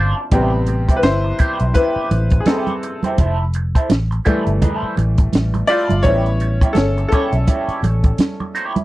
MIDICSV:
0, 0, Header, 1, 7, 480
1, 0, Start_track
1, 0, Key_signature, 0, "minor"
1, 0, Tempo, 715990
1, 213, Time_signature, 4, 2, 24, 8
1, 5930, End_track
2, 0, Start_track
2, 0, Title_t, "Clean electric guitar"
2, 0, Program_c, 0, 27
2, 0, Note_on_c, 0, 62, 61
2, 0, Note_on_c, 0, 65, 67
2, 0, Note_on_c, 0, 72, 61
2, 109, Note_off_c, 0, 72, 0
2, 119, Note_off_c, 0, 65, 0
2, 136, Note_off_c, 0, 62, 0
2, 213, Note_on_c, 0, 64, 69
2, 221, Note_on_c, 0, 67, 70
2, 227, Note_on_c, 0, 72, 81
2, 350, Note_off_c, 0, 72, 0
2, 359, Note_off_c, 0, 67, 0
2, 374, Note_off_c, 0, 64, 0
2, 592, Note_on_c, 0, 72, 49
2, 600, Note_on_c, 0, 67, 45
2, 607, Note_on_c, 0, 64, 42
2, 688, Note_off_c, 0, 72, 0
2, 692, Note_off_c, 0, 67, 0
2, 696, Note_off_c, 0, 64, 0
2, 931, Note_on_c, 0, 64, 70
2, 937, Note_on_c, 0, 67, 72
2, 942, Note_on_c, 0, 72, 81
2, 1063, Note_off_c, 0, 72, 0
2, 1074, Note_off_c, 0, 67, 0
2, 1093, Note_off_c, 0, 64, 0
2, 1173, Note_on_c, 0, 64, 66
2, 1180, Note_on_c, 0, 67, 61
2, 1184, Note_on_c, 0, 72, 68
2, 1397, Note_off_c, 0, 64, 0
2, 1400, Note_off_c, 0, 67, 0
2, 1402, Note_off_c, 0, 72, 0
2, 1656, Note_on_c, 0, 64, 65
2, 1664, Note_on_c, 0, 67, 68
2, 1668, Note_on_c, 0, 72, 78
2, 1815, Note_off_c, 0, 64, 0
2, 1819, Note_off_c, 0, 67, 0
2, 1822, Note_off_c, 0, 72, 0
2, 2040, Note_on_c, 0, 72, 53
2, 2047, Note_on_c, 0, 67, 51
2, 2051, Note_on_c, 0, 64, 41
2, 2129, Note_off_c, 0, 64, 0
2, 2132, Note_off_c, 0, 72, 0
2, 2135, Note_off_c, 0, 67, 0
2, 2137, Note_on_c, 0, 64, 71
2, 2146, Note_on_c, 0, 69, 75
2, 2151, Note_on_c, 0, 72, 86
2, 2271, Note_off_c, 0, 72, 0
2, 2279, Note_off_c, 0, 69, 0
2, 2296, Note_off_c, 0, 64, 0
2, 2514, Note_on_c, 0, 72, 55
2, 2520, Note_on_c, 0, 69, 50
2, 2525, Note_on_c, 0, 64, 45
2, 2609, Note_off_c, 0, 72, 0
2, 2612, Note_off_c, 0, 69, 0
2, 2614, Note_off_c, 0, 64, 0
2, 2850, Note_on_c, 0, 64, 65
2, 2857, Note_on_c, 0, 69, 73
2, 2863, Note_on_c, 0, 72, 70
2, 2984, Note_off_c, 0, 72, 0
2, 2992, Note_off_c, 0, 69, 0
2, 3012, Note_off_c, 0, 64, 0
2, 3095, Note_on_c, 0, 63, 59
2, 3101, Note_on_c, 0, 68, 68
2, 3110, Note_on_c, 0, 71, 68
2, 3189, Note_off_c, 0, 63, 0
2, 3189, Note_on_c, 0, 64, 59
2, 3195, Note_off_c, 0, 68, 0
2, 3195, Note_on_c, 0, 69, 68
2, 3197, Note_off_c, 0, 71, 0
2, 3197, Note_on_c, 0, 72, 68
2, 3318, Note_off_c, 0, 64, 0
2, 3321, Note_off_c, 0, 69, 0
2, 3325, Note_off_c, 0, 72, 0
2, 3812, Note_on_c, 0, 64, 63
2, 3821, Note_on_c, 0, 69, 66
2, 3825, Note_on_c, 0, 72, 64
2, 3946, Note_off_c, 0, 72, 0
2, 3956, Note_off_c, 0, 69, 0
2, 3973, Note_off_c, 0, 64, 0
2, 4055, Note_on_c, 0, 64, 68
2, 4064, Note_on_c, 0, 67, 70
2, 4069, Note_on_c, 0, 73, 77
2, 4188, Note_off_c, 0, 73, 0
2, 4197, Note_off_c, 0, 67, 0
2, 4215, Note_off_c, 0, 64, 0
2, 4434, Note_on_c, 0, 73, 58
2, 4441, Note_on_c, 0, 67, 50
2, 4446, Note_on_c, 0, 64, 45
2, 4529, Note_off_c, 0, 73, 0
2, 4532, Note_off_c, 0, 67, 0
2, 4535, Note_off_c, 0, 64, 0
2, 4775, Note_on_c, 0, 64, 69
2, 4780, Note_on_c, 0, 67, 77
2, 4786, Note_on_c, 0, 73, 88
2, 4906, Note_off_c, 0, 73, 0
2, 4915, Note_off_c, 0, 67, 0
2, 4935, Note_off_c, 0, 64, 0
2, 5012, Note_on_c, 0, 64, 65
2, 5018, Note_on_c, 0, 67, 62
2, 5024, Note_on_c, 0, 73, 70
2, 5236, Note_off_c, 0, 64, 0
2, 5239, Note_off_c, 0, 67, 0
2, 5242, Note_off_c, 0, 73, 0
2, 5730, Note_on_c, 0, 64, 56
2, 5736, Note_on_c, 0, 67, 59
2, 5742, Note_on_c, 0, 73, 74
2, 5859, Note_off_c, 0, 73, 0
2, 5869, Note_off_c, 0, 67, 0
2, 5892, Note_off_c, 0, 64, 0
2, 5930, End_track
3, 0, Start_track
3, 0, Title_t, "Grand piano"
3, 0, Program_c, 1, 0
3, 0, Control_c, 1, 64, 127
3, 0, Note_on_c, 1, 65, 62
3, 0, Note_on_c, 1, 72, 91
3, 0, Note_on_c, 1, 74, 83
3, 0, Note_on_c, 1, 76, 59
3, 214, Note_on_c, 1, 48, 49
3, 214, Note_on_c, 1, 67, 79
3, 218, Note_on_c, 1, 55, 44
3, 223, Control_c, 1, 64, 0
3, 225, Note_off_c, 1, 74, 0
3, 225, Note_on_c, 1, 59, 56
3, 225, Note_on_c, 1, 60, 63
3, 226, Note_off_c, 1, 65, 0
3, 227, Note_off_c, 1, 72, 0
3, 227, Note_off_c, 1, 76, 0
3, 341, Control_c, 1, 64, 127
3, 547, Note_off_c, 1, 48, 0
3, 549, Note_off_c, 1, 55, 0
3, 553, Note_off_c, 1, 59, 0
3, 633, Note_off_c, 1, 60, 0
3, 647, Note_on_c, 1, 71, 69
3, 667, Note_off_c, 1, 67, 0
3, 690, Note_off_c, 1, 71, 0
3, 692, Note_on_c, 1, 72, 91
3, 701, Note_on_c, 1, 64, 69
3, 1146, Note_off_c, 1, 72, 0
3, 1150, Note_off_c, 1, 64, 0
3, 1168, Note_on_c, 1, 71, 85
3, 1182, Note_on_c, 1, 64, 66
3, 1591, Note_off_c, 1, 64, 0
3, 1612, Note_on_c, 1, 68, 55
3, 1624, Note_off_c, 1, 71, 0
3, 1652, Note_off_c, 1, 68, 0
3, 1653, Note_on_c, 1, 69, 67
3, 1668, Note_on_c, 1, 60, 52
3, 2006, Note_off_c, 1, 69, 0
3, 2014, Note_off_c, 1, 60, 0
3, 2142, Control_c, 1, 64, 0
3, 2274, Control_c, 1, 64, 127
3, 2853, Note_on_c, 1, 52, 53
3, 2857, Note_on_c, 1, 55, 48
3, 2859, Note_on_c, 1, 57, 58
3, 3186, Note_off_c, 1, 52, 0
3, 3188, Note_off_c, 1, 55, 0
3, 3189, Note_off_c, 1, 57, 0
3, 3804, Note_on_c, 1, 74, 95
3, 3820, Note_on_c, 1, 65, 74
3, 3859, Note_off_c, 1, 74, 0
3, 3873, Note_off_c, 1, 65, 0
3, 4040, Note_on_c, 1, 73, 96
3, 4050, Note_on_c, 1, 55, 52
3, 4053, Note_on_c, 1, 59, 48
3, 4057, Note_on_c, 1, 61, 59
3, 4060, Note_on_c, 1, 64, 70
3, 4062, Control_c, 1, 64, 0
3, 4174, Control_c, 1, 64, 127
3, 4499, Note_off_c, 1, 73, 0
3, 4509, Note_off_c, 1, 64, 0
3, 4511, Note_on_c, 1, 69, 80
3, 4524, Note_off_c, 1, 61, 0
3, 4534, Note_on_c, 1, 61, 62
3, 4740, Note_off_c, 1, 69, 0
3, 4750, Note_on_c, 1, 69, 78
3, 4756, Note_off_c, 1, 61, 0
3, 4777, Note_on_c, 1, 61, 58
3, 5694, Note_off_c, 1, 69, 0
3, 5708, Note_off_c, 1, 61, 0
3, 5930, Note_off_c, 1, 55, 0
3, 5930, Note_off_c, 1, 59, 0
3, 5930, End_track
4, 0, Start_track
4, 0, Title_t, "Fingered electric bass"
4, 0, Program_c, 2, 33
4, 0, Note_on_c, 2, 31, 68
4, 79, Note_off_c, 2, 31, 0
4, 214, Note_on_c, 2, 33, 94
4, 588, Note_off_c, 2, 33, 0
4, 693, Note_on_c, 2, 31, 74
4, 880, Note_off_c, 2, 31, 0
4, 1076, Note_on_c, 2, 35, 76
4, 1153, Note_off_c, 2, 35, 0
4, 1415, Note_on_c, 2, 33, 86
4, 1601, Note_off_c, 2, 33, 0
4, 2138, Note_on_c, 2, 29, 85
4, 2510, Note_off_c, 2, 29, 0
4, 2618, Note_on_c, 2, 33, 82
4, 2803, Note_off_c, 2, 33, 0
4, 2994, Note_on_c, 2, 31, 81
4, 3072, Note_off_c, 2, 31, 0
4, 3337, Note_on_c, 2, 33, 83
4, 3522, Note_off_c, 2, 33, 0
4, 3577, Note_on_c, 2, 33, 74
4, 3762, Note_off_c, 2, 33, 0
4, 3956, Note_on_c, 2, 31, 86
4, 4033, Note_off_c, 2, 31, 0
4, 4055, Note_on_c, 2, 33, 96
4, 4428, Note_off_c, 2, 33, 0
4, 4536, Note_on_c, 2, 31, 80
4, 4722, Note_off_c, 2, 31, 0
4, 4912, Note_on_c, 2, 35, 86
4, 4990, Note_off_c, 2, 35, 0
4, 5248, Note_on_c, 2, 33, 80
4, 5436, Note_off_c, 2, 33, 0
4, 5930, End_track
5, 0, Start_track
5, 0, Title_t, "Muted clean electric guitar strokes"
5, 117, Note_on_c, 9, 29, 34
5, 184, Note_off_c, 9, 29, 0
5, 358, Note_on_c, 9, 29, 40
5, 425, Note_off_c, 9, 29, 0
5, 455, Note_on_c, 9, 29, 28
5, 522, Note_off_c, 9, 29, 0
5, 835, Note_on_c, 9, 29, 34
5, 902, Note_off_c, 9, 29, 0
5, 1071, Note_on_c, 9, 29, 37
5, 1138, Note_off_c, 9, 29, 0
5, 1419, Note_on_c, 9, 29, 30
5, 1486, Note_off_c, 9, 29, 0
5, 1556, Note_on_c, 9, 29, 32
5, 1623, Note_off_c, 9, 29, 0
5, 1900, Note_on_c, 9, 29, 32
5, 1967, Note_off_c, 9, 29, 0
5, 2279, Note_on_c, 9, 29, 37
5, 2346, Note_off_c, 9, 29, 0
5, 2380, Note_on_c, 9, 29, 37
5, 2447, Note_off_c, 9, 29, 0
5, 2755, Note_on_c, 9, 29, 44
5, 2822, Note_off_c, 9, 29, 0
5, 2992, Note_on_c, 9, 29, 42
5, 3059, Note_off_c, 9, 29, 0
5, 3473, Note_on_c, 9, 29, 33
5, 3540, Note_off_c, 9, 29, 0
5, 3713, Note_on_c, 9, 29, 40
5, 3780, Note_off_c, 9, 29, 0
5, 3954, Note_on_c, 9, 29, 37
5, 4021, Note_off_c, 9, 29, 0
5, 4196, Note_on_c, 9, 29, 36
5, 4263, Note_off_c, 9, 29, 0
5, 4299, Note_on_c, 9, 29, 38
5, 4366, Note_off_c, 9, 29, 0
5, 4678, Note_on_c, 9, 29, 43
5, 4745, Note_off_c, 9, 29, 0
5, 4914, Note_on_c, 9, 29, 39
5, 4981, Note_off_c, 9, 29, 0
5, 5254, Note_on_c, 9, 29, 36
5, 5321, Note_off_c, 9, 29, 0
5, 5395, Note_on_c, 9, 29, 33
5, 5462, Note_off_c, 9, 29, 0
5, 5633, Note_on_c, 9, 29, 39
5, 5700, Note_off_c, 9, 29, 0
5, 5867, Note_on_c, 9, 29, 41
5, 5930, Note_off_c, 9, 29, 0
5, 5930, End_track
6, 0, Start_track
6, 0, Title_t, "Muted fingered electric bass strokes"
6, 1314, Note_on_c, 9, 29, 41
6, 1381, Note_off_c, 9, 29, 0
6, 3237, Note_on_c, 9, 29, 45
6, 3304, Note_off_c, 9, 29, 0
6, 5151, Note_on_c, 9, 29, 43
6, 5218, Note_off_c, 9, 29, 0
6, 5930, End_track
7, 0, Start_track
7, 0, Title_t, "Drums"
7, 211, Note_on_c, 9, 42, 77
7, 213, Note_on_c, 9, 36, 94
7, 213, Note_on_c, 9, 62, 51
7, 278, Note_off_c, 9, 42, 0
7, 280, Note_off_c, 9, 36, 0
7, 280, Note_off_c, 9, 62, 0
7, 446, Note_on_c, 9, 42, 64
7, 458, Note_on_c, 9, 62, 29
7, 513, Note_off_c, 9, 42, 0
7, 525, Note_off_c, 9, 62, 0
7, 594, Note_on_c, 9, 36, 83
7, 599, Note_on_c, 9, 42, 50
7, 661, Note_off_c, 9, 36, 0
7, 666, Note_off_c, 9, 42, 0
7, 689, Note_on_c, 9, 42, 82
7, 692, Note_on_c, 9, 63, 65
7, 700, Note_on_c, 9, 38, 95
7, 756, Note_off_c, 9, 42, 0
7, 759, Note_off_c, 9, 63, 0
7, 767, Note_off_c, 9, 38, 0
7, 930, Note_on_c, 9, 42, 69
7, 937, Note_on_c, 9, 36, 86
7, 997, Note_off_c, 9, 42, 0
7, 1004, Note_off_c, 9, 36, 0
7, 1069, Note_on_c, 9, 42, 44
7, 1136, Note_off_c, 9, 42, 0
7, 1171, Note_on_c, 9, 42, 82
7, 1175, Note_on_c, 9, 36, 79
7, 1178, Note_on_c, 9, 62, 46
7, 1238, Note_off_c, 9, 42, 0
7, 1242, Note_off_c, 9, 36, 0
7, 1245, Note_off_c, 9, 62, 0
7, 1415, Note_on_c, 9, 62, 44
7, 1417, Note_on_c, 9, 42, 69
7, 1482, Note_off_c, 9, 62, 0
7, 1484, Note_off_c, 9, 42, 0
7, 1545, Note_on_c, 9, 42, 47
7, 1552, Note_on_c, 9, 36, 86
7, 1612, Note_off_c, 9, 42, 0
7, 1619, Note_off_c, 9, 36, 0
7, 1647, Note_on_c, 9, 42, 85
7, 1650, Note_on_c, 9, 63, 58
7, 1661, Note_on_c, 9, 38, 111
7, 1714, Note_off_c, 9, 42, 0
7, 1717, Note_off_c, 9, 63, 0
7, 1728, Note_off_c, 9, 38, 0
7, 1789, Note_on_c, 9, 63, 43
7, 1792, Note_on_c, 9, 42, 33
7, 1856, Note_off_c, 9, 63, 0
7, 1859, Note_off_c, 9, 42, 0
7, 1898, Note_on_c, 9, 42, 65
7, 1965, Note_off_c, 9, 42, 0
7, 2030, Note_on_c, 9, 63, 54
7, 2038, Note_on_c, 9, 42, 53
7, 2097, Note_off_c, 9, 63, 0
7, 2105, Note_off_c, 9, 42, 0
7, 2132, Note_on_c, 9, 62, 50
7, 2134, Note_on_c, 9, 36, 102
7, 2134, Note_on_c, 9, 42, 76
7, 2199, Note_off_c, 9, 62, 0
7, 2201, Note_off_c, 9, 36, 0
7, 2201, Note_off_c, 9, 42, 0
7, 2370, Note_on_c, 9, 42, 64
7, 2438, Note_off_c, 9, 42, 0
7, 2516, Note_on_c, 9, 36, 82
7, 2521, Note_on_c, 9, 42, 46
7, 2583, Note_off_c, 9, 36, 0
7, 2588, Note_off_c, 9, 42, 0
7, 2613, Note_on_c, 9, 63, 66
7, 2614, Note_on_c, 9, 42, 82
7, 2625, Note_on_c, 9, 38, 104
7, 2680, Note_off_c, 9, 63, 0
7, 2681, Note_off_c, 9, 42, 0
7, 2692, Note_off_c, 9, 38, 0
7, 2762, Note_on_c, 9, 42, 32
7, 2829, Note_off_c, 9, 42, 0
7, 2854, Note_on_c, 9, 42, 73
7, 2860, Note_on_c, 9, 36, 87
7, 2921, Note_off_c, 9, 42, 0
7, 2927, Note_off_c, 9, 36, 0
7, 2994, Note_on_c, 9, 42, 44
7, 3061, Note_off_c, 9, 42, 0
7, 3096, Note_on_c, 9, 62, 45
7, 3096, Note_on_c, 9, 64, 67
7, 3098, Note_on_c, 9, 36, 76
7, 3098, Note_on_c, 9, 42, 83
7, 3163, Note_off_c, 9, 62, 0
7, 3163, Note_off_c, 9, 64, 0
7, 3165, Note_off_c, 9, 36, 0
7, 3165, Note_off_c, 9, 42, 0
7, 3334, Note_on_c, 9, 62, 42
7, 3343, Note_on_c, 9, 42, 69
7, 3401, Note_off_c, 9, 62, 0
7, 3410, Note_off_c, 9, 42, 0
7, 3470, Note_on_c, 9, 42, 48
7, 3475, Note_on_c, 9, 36, 90
7, 3538, Note_off_c, 9, 42, 0
7, 3542, Note_off_c, 9, 36, 0
7, 3571, Note_on_c, 9, 63, 58
7, 3574, Note_on_c, 9, 42, 88
7, 3588, Note_on_c, 9, 38, 106
7, 3638, Note_off_c, 9, 63, 0
7, 3641, Note_off_c, 9, 42, 0
7, 3655, Note_off_c, 9, 38, 0
7, 3714, Note_on_c, 9, 63, 44
7, 3716, Note_on_c, 9, 42, 33
7, 3781, Note_off_c, 9, 63, 0
7, 3783, Note_off_c, 9, 42, 0
7, 3817, Note_on_c, 9, 42, 70
7, 3884, Note_off_c, 9, 42, 0
7, 3951, Note_on_c, 9, 63, 57
7, 3958, Note_on_c, 9, 42, 57
7, 4018, Note_off_c, 9, 63, 0
7, 4025, Note_off_c, 9, 42, 0
7, 4050, Note_on_c, 9, 62, 54
7, 4054, Note_on_c, 9, 36, 100
7, 4055, Note_on_c, 9, 42, 76
7, 4117, Note_off_c, 9, 62, 0
7, 4121, Note_off_c, 9, 36, 0
7, 4122, Note_off_c, 9, 42, 0
7, 4196, Note_on_c, 9, 42, 31
7, 4263, Note_off_c, 9, 42, 0
7, 4291, Note_on_c, 9, 42, 66
7, 4358, Note_off_c, 9, 42, 0
7, 4434, Note_on_c, 9, 36, 88
7, 4440, Note_on_c, 9, 42, 50
7, 4501, Note_off_c, 9, 36, 0
7, 4507, Note_off_c, 9, 42, 0
7, 4525, Note_on_c, 9, 63, 69
7, 4532, Note_on_c, 9, 42, 87
7, 4543, Note_on_c, 9, 38, 102
7, 4592, Note_off_c, 9, 63, 0
7, 4599, Note_off_c, 9, 42, 0
7, 4610, Note_off_c, 9, 38, 0
7, 4679, Note_on_c, 9, 42, 32
7, 4746, Note_off_c, 9, 42, 0
7, 4773, Note_on_c, 9, 42, 73
7, 4777, Note_on_c, 9, 36, 89
7, 4840, Note_off_c, 9, 42, 0
7, 4844, Note_off_c, 9, 36, 0
7, 4911, Note_on_c, 9, 42, 42
7, 4978, Note_off_c, 9, 42, 0
7, 5011, Note_on_c, 9, 62, 49
7, 5012, Note_on_c, 9, 42, 78
7, 5014, Note_on_c, 9, 36, 79
7, 5078, Note_off_c, 9, 62, 0
7, 5079, Note_off_c, 9, 42, 0
7, 5081, Note_off_c, 9, 36, 0
7, 5153, Note_on_c, 9, 42, 30
7, 5220, Note_off_c, 9, 42, 0
7, 5254, Note_on_c, 9, 62, 46
7, 5256, Note_on_c, 9, 42, 63
7, 5321, Note_off_c, 9, 62, 0
7, 5323, Note_off_c, 9, 42, 0
7, 5388, Note_on_c, 9, 42, 47
7, 5390, Note_on_c, 9, 36, 87
7, 5455, Note_off_c, 9, 42, 0
7, 5457, Note_off_c, 9, 36, 0
7, 5486, Note_on_c, 9, 42, 84
7, 5489, Note_on_c, 9, 63, 59
7, 5500, Note_on_c, 9, 38, 108
7, 5553, Note_off_c, 9, 42, 0
7, 5556, Note_off_c, 9, 63, 0
7, 5567, Note_off_c, 9, 38, 0
7, 5634, Note_on_c, 9, 63, 42
7, 5701, Note_off_c, 9, 63, 0
7, 5735, Note_on_c, 9, 42, 67
7, 5802, Note_off_c, 9, 42, 0
7, 5873, Note_on_c, 9, 63, 57
7, 5874, Note_on_c, 9, 42, 55
7, 5930, Note_off_c, 9, 42, 0
7, 5930, Note_off_c, 9, 63, 0
7, 5930, End_track
0, 0, End_of_file